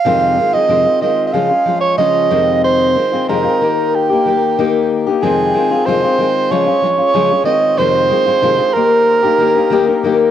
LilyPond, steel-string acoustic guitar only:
\new Staff \with { instrumentName = "Steel-string acoustic guitar" } { \time 4/4 \key f \minor \tempo 4 = 93 <f, c ees aes c' f'>8 <ees aes c' f'>16 <ees aes c' f'>16 <f, c ees aes c' f'>16 <ees aes c' f'>16 <ees aes c' f'>8 <des f aes des' f'>16 <aes des' f'>16 <f aes des' f'>8 <des f aes des' f'>8 <f, c ees aes c' f'>8~ | <f, c ees aes c' f'>8 <ees aes c' f'>16 <ees aes c' f'>16 <f, c ees aes c' f'>16 <ees aes c' f'>16 <ees bes ees' g'>8. <bes ees' g'>16 <ees bes ees' g'>8 <ees bes ees' g'>8. <bes ees' g'>16 | <f, c ees aes c' f'>8 <ees aes c' f'>16 <ees aes c' f'>16 <f, c ees aes c' f'>16 <ees aes c' f'>16 <ees aes c' f'>8 <des f aes des' f'>16 <aes des' f'>16 <f aes des' f'>16 <aes des' f'>16 <des f aes des' f'>16 <aes des' f'>16 <ees aes c' f'>8 | <f, c ees aes c' f'>8 <ees aes c' f'>16 <ees aes c' f'>16 <f, c ees aes c' f'>16 <ees aes c' f'>16 <ees bes ees' g'>8. <bes ees' g'>16 <ees bes ees' g'>16 <bes ees' g'>16 <ees bes ees' g'>16 <bes ees' g'>16 <ees bes ees' g'>8 | }